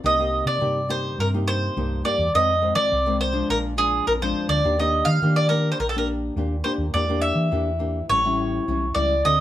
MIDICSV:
0, 0, Header, 1, 4, 480
1, 0, Start_track
1, 0, Tempo, 575264
1, 36, Time_signature, 4, 2, 24, 8
1, 7847, End_track
2, 0, Start_track
2, 0, Title_t, "Mandolin"
2, 0, Program_c, 0, 25
2, 48, Note_on_c, 0, 75, 86
2, 377, Note_off_c, 0, 75, 0
2, 393, Note_on_c, 0, 74, 82
2, 751, Note_off_c, 0, 74, 0
2, 755, Note_on_c, 0, 72, 81
2, 1000, Note_off_c, 0, 72, 0
2, 1004, Note_on_c, 0, 70, 84
2, 1068, Note_off_c, 0, 70, 0
2, 1232, Note_on_c, 0, 72, 90
2, 1681, Note_off_c, 0, 72, 0
2, 1710, Note_on_c, 0, 74, 88
2, 1936, Note_off_c, 0, 74, 0
2, 1961, Note_on_c, 0, 75, 93
2, 2294, Note_off_c, 0, 75, 0
2, 2297, Note_on_c, 0, 74, 95
2, 2641, Note_off_c, 0, 74, 0
2, 2676, Note_on_c, 0, 72, 86
2, 2899, Note_off_c, 0, 72, 0
2, 2923, Note_on_c, 0, 70, 94
2, 2986, Note_off_c, 0, 70, 0
2, 3155, Note_on_c, 0, 68, 89
2, 3378, Note_off_c, 0, 68, 0
2, 3398, Note_on_c, 0, 70, 83
2, 3439, Note_off_c, 0, 70, 0
2, 3523, Note_on_c, 0, 72, 78
2, 3743, Note_off_c, 0, 72, 0
2, 3747, Note_on_c, 0, 74, 89
2, 3974, Note_off_c, 0, 74, 0
2, 4001, Note_on_c, 0, 75, 77
2, 4214, Note_on_c, 0, 77, 96
2, 4245, Note_off_c, 0, 75, 0
2, 4472, Note_off_c, 0, 77, 0
2, 4474, Note_on_c, 0, 74, 89
2, 4577, Note_off_c, 0, 74, 0
2, 4581, Note_on_c, 0, 70, 81
2, 4752, Note_off_c, 0, 70, 0
2, 4769, Note_on_c, 0, 72, 75
2, 4836, Note_off_c, 0, 72, 0
2, 4839, Note_on_c, 0, 70, 69
2, 4914, Note_off_c, 0, 70, 0
2, 4917, Note_on_c, 0, 69, 76
2, 4985, Note_off_c, 0, 69, 0
2, 4989, Note_on_c, 0, 70, 64
2, 5069, Note_off_c, 0, 70, 0
2, 5541, Note_on_c, 0, 72, 81
2, 5607, Note_off_c, 0, 72, 0
2, 5788, Note_on_c, 0, 74, 89
2, 6014, Note_off_c, 0, 74, 0
2, 6020, Note_on_c, 0, 76, 84
2, 6713, Note_off_c, 0, 76, 0
2, 6754, Note_on_c, 0, 73, 94
2, 7440, Note_off_c, 0, 73, 0
2, 7464, Note_on_c, 0, 74, 86
2, 7691, Note_off_c, 0, 74, 0
2, 7718, Note_on_c, 0, 75, 97
2, 7847, Note_off_c, 0, 75, 0
2, 7847, End_track
3, 0, Start_track
3, 0, Title_t, "Nylon-string guitar"
3, 0, Program_c, 1, 24
3, 30, Note_on_c, 1, 48, 57
3, 35, Note_on_c, 1, 58, 50
3, 35, Note_on_c, 1, 63, 51
3, 40, Note_on_c, 1, 67, 60
3, 116, Note_off_c, 1, 58, 0
3, 117, Note_off_c, 1, 63, 0
3, 119, Note_off_c, 1, 67, 0
3, 156, Note_on_c, 1, 58, 56
3, 160, Note_on_c, 1, 63, 56
3, 165, Note_on_c, 1, 67, 61
3, 478, Note_off_c, 1, 58, 0
3, 479, Note_off_c, 1, 63, 0
3, 482, Note_off_c, 1, 67, 0
3, 490, Note_off_c, 1, 48, 0
3, 504, Note_on_c, 1, 58, 55
3, 507, Note_on_c, 1, 43, 55
3, 511, Note_on_c, 1, 63, 51
3, 513, Note_on_c, 1, 67, 56
3, 651, Note_off_c, 1, 58, 0
3, 654, Note_off_c, 1, 63, 0
3, 656, Note_off_c, 1, 67, 0
3, 739, Note_on_c, 1, 58, 47
3, 744, Note_on_c, 1, 63, 56
3, 747, Note_on_c, 1, 67, 63
3, 968, Note_off_c, 1, 43, 0
3, 973, Note_off_c, 1, 58, 0
3, 974, Note_off_c, 1, 63, 0
3, 977, Note_off_c, 1, 67, 0
3, 995, Note_on_c, 1, 48, 52
3, 1118, Note_on_c, 1, 58, 58
3, 1121, Note_on_c, 1, 63, 58
3, 1125, Note_on_c, 1, 67, 64
3, 1438, Note_off_c, 1, 58, 0
3, 1440, Note_off_c, 1, 63, 0
3, 1442, Note_off_c, 1, 67, 0
3, 1452, Note_off_c, 1, 48, 0
3, 1474, Note_on_c, 1, 43, 47
3, 1476, Note_on_c, 1, 58, 51
3, 1480, Note_on_c, 1, 63, 51
3, 1480, Note_on_c, 1, 67, 55
3, 1677, Note_off_c, 1, 58, 0
3, 1678, Note_off_c, 1, 63, 0
3, 1680, Note_off_c, 1, 67, 0
3, 1704, Note_on_c, 1, 58, 48
3, 1708, Note_on_c, 1, 63, 48
3, 1711, Note_on_c, 1, 67, 54
3, 1864, Note_off_c, 1, 58, 0
3, 1867, Note_off_c, 1, 63, 0
3, 1868, Note_off_c, 1, 67, 0
3, 1932, Note_off_c, 1, 43, 0
3, 1954, Note_on_c, 1, 41, 51
3, 1957, Note_on_c, 1, 51, 54
3, 1958, Note_on_c, 1, 56, 53
3, 1962, Note_on_c, 1, 60, 59
3, 2096, Note_off_c, 1, 51, 0
3, 2098, Note_off_c, 1, 56, 0
3, 2100, Note_off_c, 1, 60, 0
3, 2183, Note_on_c, 1, 51, 51
3, 2188, Note_on_c, 1, 56, 49
3, 2189, Note_on_c, 1, 60, 56
3, 2411, Note_off_c, 1, 41, 0
3, 2415, Note_off_c, 1, 51, 0
3, 2416, Note_off_c, 1, 56, 0
3, 2417, Note_off_c, 1, 60, 0
3, 2432, Note_on_c, 1, 48, 53
3, 2555, Note_on_c, 1, 51, 63
3, 2560, Note_on_c, 1, 56, 59
3, 2566, Note_on_c, 1, 60, 59
3, 2757, Note_off_c, 1, 51, 0
3, 2760, Note_off_c, 1, 56, 0
3, 2761, Note_off_c, 1, 60, 0
3, 2773, Note_on_c, 1, 53, 65
3, 2778, Note_on_c, 1, 56, 69
3, 2781, Note_on_c, 1, 62, 68
3, 2890, Note_off_c, 1, 48, 0
3, 2913, Note_on_c, 1, 46, 51
3, 3106, Note_off_c, 1, 53, 0
3, 3109, Note_off_c, 1, 56, 0
3, 3109, Note_off_c, 1, 62, 0
3, 3144, Note_on_c, 1, 53, 53
3, 3148, Note_on_c, 1, 56, 55
3, 3152, Note_on_c, 1, 62, 55
3, 3370, Note_off_c, 1, 46, 0
3, 3393, Note_on_c, 1, 41, 49
3, 3472, Note_off_c, 1, 53, 0
3, 3474, Note_off_c, 1, 56, 0
3, 3475, Note_off_c, 1, 62, 0
3, 3518, Note_on_c, 1, 53, 63
3, 3521, Note_on_c, 1, 56, 57
3, 3528, Note_on_c, 1, 62, 62
3, 3838, Note_off_c, 1, 53, 0
3, 3841, Note_off_c, 1, 56, 0
3, 3842, Note_off_c, 1, 62, 0
3, 3850, Note_off_c, 1, 41, 0
3, 3873, Note_on_c, 1, 51, 57
3, 3873, Note_on_c, 1, 58, 54
3, 3878, Note_on_c, 1, 62, 51
3, 3882, Note_on_c, 1, 67, 60
3, 3955, Note_off_c, 1, 58, 0
3, 3959, Note_off_c, 1, 62, 0
3, 3960, Note_off_c, 1, 67, 0
3, 3998, Note_on_c, 1, 58, 60
3, 4002, Note_on_c, 1, 62, 54
3, 4008, Note_on_c, 1, 67, 64
3, 4318, Note_off_c, 1, 58, 0
3, 4320, Note_off_c, 1, 62, 0
3, 4323, Note_off_c, 1, 67, 0
3, 4330, Note_off_c, 1, 51, 0
3, 4356, Note_on_c, 1, 46, 59
3, 4358, Note_on_c, 1, 58, 55
3, 4360, Note_on_c, 1, 62, 64
3, 4365, Note_on_c, 1, 67, 63
3, 4558, Note_off_c, 1, 58, 0
3, 4559, Note_off_c, 1, 62, 0
3, 4561, Note_off_c, 1, 67, 0
3, 4588, Note_on_c, 1, 58, 45
3, 4592, Note_on_c, 1, 62, 51
3, 4596, Note_on_c, 1, 67, 58
3, 4812, Note_off_c, 1, 46, 0
3, 4817, Note_off_c, 1, 58, 0
3, 4818, Note_off_c, 1, 62, 0
3, 4821, Note_off_c, 1, 67, 0
3, 4839, Note_on_c, 1, 51, 58
3, 4970, Note_on_c, 1, 58, 54
3, 4975, Note_on_c, 1, 62, 56
3, 4976, Note_on_c, 1, 67, 63
3, 5284, Note_off_c, 1, 58, 0
3, 5285, Note_off_c, 1, 62, 0
3, 5287, Note_off_c, 1, 67, 0
3, 5292, Note_off_c, 1, 51, 0
3, 5313, Note_on_c, 1, 46, 52
3, 5314, Note_on_c, 1, 58, 47
3, 5318, Note_on_c, 1, 62, 48
3, 5321, Note_on_c, 1, 67, 53
3, 5454, Note_off_c, 1, 58, 0
3, 5457, Note_off_c, 1, 62, 0
3, 5459, Note_off_c, 1, 67, 0
3, 5547, Note_on_c, 1, 58, 58
3, 5551, Note_on_c, 1, 62, 51
3, 5552, Note_on_c, 1, 67, 55
3, 5705, Note_off_c, 1, 58, 0
3, 5706, Note_off_c, 1, 62, 0
3, 5708, Note_off_c, 1, 67, 0
3, 5770, Note_off_c, 1, 46, 0
3, 5793, Note_on_c, 1, 58, 55
3, 5794, Note_on_c, 1, 52, 53
3, 5797, Note_on_c, 1, 62, 53
3, 5802, Note_on_c, 1, 67, 59
3, 5865, Note_off_c, 1, 58, 0
3, 5868, Note_off_c, 1, 62, 0
3, 5869, Note_off_c, 1, 67, 0
3, 5915, Note_on_c, 1, 58, 58
3, 5919, Note_on_c, 1, 62, 59
3, 5925, Note_on_c, 1, 67, 59
3, 6236, Note_off_c, 1, 58, 0
3, 6238, Note_off_c, 1, 62, 0
3, 6241, Note_off_c, 1, 67, 0
3, 6250, Note_off_c, 1, 52, 0
3, 6269, Note_on_c, 1, 52, 53
3, 6272, Note_on_c, 1, 58, 57
3, 6277, Note_on_c, 1, 67, 57
3, 6278, Note_on_c, 1, 62, 52
3, 6414, Note_off_c, 1, 58, 0
3, 6415, Note_off_c, 1, 62, 0
3, 6416, Note_off_c, 1, 67, 0
3, 6501, Note_on_c, 1, 58, 52
3, 6508, Note_on_c, 1, 62, 51
3, 6508, Note_on_c, 1, 67, 50
3, 6662, Note_off_c, 1, 58, 0
3, 6664, Note_off_c, 1, 62, 0
3, 6665, Note_off_c, 1, 67, 0
3, 6727, Note_off_c, 1, 52, 0
3, 6754, Note_on_c, 1, 45, 51
3, 6755, Note_on_c, 1, 55, 53
3, 6759, Note_on_c, 1, 61, 50
3, 6760, Note_on_c, 1, 64, 62
3, 6826, Note_off_c, 1, 55, 0
3, 6827, Note_off_c, 1, 61, 0
3, 6829, Note_off_c, 1, 64, 0
3, 6882, Note_on_c, 1, 55, 54
3, 6885, Note_on_c, 1, 61, 59
3, 6887, Note_on_c, 1, 64, 63
3, 7199, Note_off_c, 1, 55, 0
3, 7200, Note_off_c, 1, 61, 0
3, 7201, Note_off_c, 1, 64, 0
3, 7210, Note_off_c, 1, 45, 0
3, 7242, Note_on_c, 1, 52, 47
3, 7242, Note_on_c, 1, 55, 49
3, 7245, Note_on_c, 1, 61, 45
3, 7248, Note_on_c, 1, 64, 55
3, 7378, Note_off_c, 1, 55, 0
3, 7380, Note_off_c, 1, 64, 0
3, 7381, Note_off_c, 1, 61, 0
3, 7467, Note_on_c, 1, 55, 55
3, 7472, Note_on_c, 1, 61, 51
3, 7475, Note_on_c, 1, 64, 55
3, 7624, Note_off_c, 1, 55, 0
3, 7626, Note_off_c, 1, 61, 0
3, 7628, Note_off_c, 1, 64, 0
3, 7693, Note_off_c, 1, 52, 0
3, 7713, Note_on_c, 1, 60, 51
3, 7714, Note_on_c, 1, 50, 55
3, 7717, Note_on_c, 1, 65, 50
3, 7721, Note_on_c, 1, 69, 55
3, 7793, Note_off_c, 1, 60, 0
3, 7796, Note_off_c, 1, 65, 0
3, 7798, Note_off_c, 1, 69, 0
3, 7847, Note_off_c, 1, 50, 0
3, 7847, End_track
4, 0, Start_track
4, 0, Title_t, "Fingered electric bass"
4, 0, Program_c, 2, 33
4, 33, Note_on_c, 2, 36, 78
4, 340, Note_off_c, 2, 36, 0
4, 381, Note_on_c, 2, 48, 70
4, 489, Note_off_c, 2, 48, 0
4, 515, Note_on_c, 2, 48, 86
4, 923, Note_off_c, 2, 48, 0
4, 989, Note_on_c, 2, 43, 79
4, 1400, Note_off_c, 2, 43, 0
4, 1474, Note_on_c, 2, 36, 91
4, 1679, Note_off_c, 2, 36, 0
4, 1820, Note_on_c, 2, 40, 72
4, 1929, Note_off_c, 2, 40, 0
4, 1959, Note_on_c, 2, 41, 85
4, 2264, Note_off_c, 2, 41, 0
4, 2301, Note_on_c, 2, 53, 76
4, 2409, Note_off_c, 2, 53, 0
4, 2437, Note_on_c, 2, 36, 82
4, 2844, Note_off_c, 2, 36, 0
4, 2916, Note_on_c, 2, 34, 83
4, 3324, Note_off_c, 2, 34, 0
4, 3398, Note_on_c, 2, 34, 94
4, 3601, Note_off_c, 2, 34, 0
4, 3742, Note_on_c, 2, 38, 80
4, 3849, Note_off_c, 2, 38, 0
4, 3876, Note_on_c, 2, 39, 87
4, 4182, Note_off_c, 2, 39, 0
4, 4222, Note_on_c, 2, 51, 83
4, 4330, Note_off_c, 2, 51, 0
4, 4357, Note_on_c, 2, 51, 84
4, 4764, Note_off_c, 2, 51, 0
4, 4836, Note_on_c, 2, 34, 86
4, 5243, Note_off_c, 2, 34, 0
4, 5307, Note_on_c, 2, 39, 96
4, 5514, Note_off_c, 2, 39, 0
4, 5656, Note_on_c, 2, 39, 73
4, 5766, Note_off_c, 2, 39, 0
4, 5789, Note_on_c, 2, 40, 88
4, 6097, Note_off_c, 2, 40, 0
4, 6135, Note_on_c, 2, 52, 78
4, 6245, Note_off_c, 2, 52, 0
4, 6275, Note_on_c, 2, 40, 81
4, 6682, Note_off_c, 2, 40, 0
4, 6752, Note_on_c, 2, 33, 79
4, 7160, Note_off_c, 2, 33, 0
4, 7239, Note_on_c, 2, 35, 75
4, 7452, Note_off_c, 2, 35, 0
4, 7469, Note_on_c, 2, 37, 73
4, 7686, Note_off_c, 2, 37, 0
4, 7716, Note_on_c, 2, 38, 83
4, 7847, Note_off_c, 2, 38, 0
4, 7847, End_track
0, 0, End_of_file